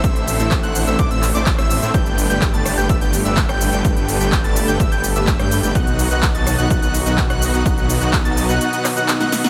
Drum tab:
HH |xxoxxxoxxxoxxxox|xxo-xxoxxxo-xxox|xxoxxxoxxxoxxxox|xxoxxxoxxxoxxxox|
SH |xxxxxxxxxxxxxxxx|xxxxxxxxxxxxxxxx|xxxxxxxxxxxxxxxx|xxxxxxxxxxxxxxxx|
CP |----x-----x-x---|----x-------x---|----x-------x---|----x-------x---|
SD |-------------r--|------r------r--|-------------r--|------r------r--|
BD |o---o---o---o---|o---o---o---o---|o---o---o---o---|o---o---o---o---|

HH |xxoxxxoxxxoxxxox|
SH |xxxxxxxxxxxxxxxx|
CP |----x-----x-x---|
SD |----------r--ooo|
BD |o---o-----------|